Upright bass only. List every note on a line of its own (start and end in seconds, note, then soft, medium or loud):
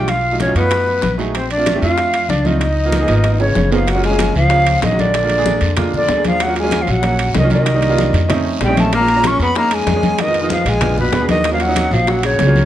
0.00 0.50 B1 medium
0.55 1.00 F#2 medium
1.03 1.77 A#1 medium
1.82 2.26 F2 medium
2.29 3.03 C#2 medium
3.08 3.52 G#1 medium
3.55 4.29 F#1 medium
4.34 4.79 C#2 medium
4.82 5.56 A#1 medium
5.61 6.05 F2 medium
6.09 6.82 D#2 medium
6.88 7.32 A#1 medium
7.35 8.08 C2 medium
8.13 8.57 F2 medium
8.60 9.34 A#1 medium
9.39 9.83 F2 medium
9.86 10.60 F2 medium
10.65 11.09 A#1 medium
11.12 11.86 D#2 medium
11.91 12.36 A#1 medium
12.39 12.65 C#2 medium